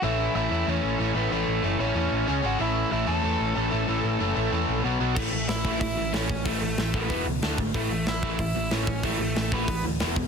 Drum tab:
CC |--------|--------|--------|--------|
HH |--------|--------|--------|--------|
SD |--------|--------|--------|--------|
BD |--------|--------|--------|--------|

CC |x-------|--------|--------|--------|
HH |--o-o-o-|o-o-o-o-|o-o-o-o-|o-o-o-o-|
SD |--o---o-|--o---o-|--o---o-|--o---o-|
BD |o--oo--o|o--oo--o|o--oo--o|o--oo--o|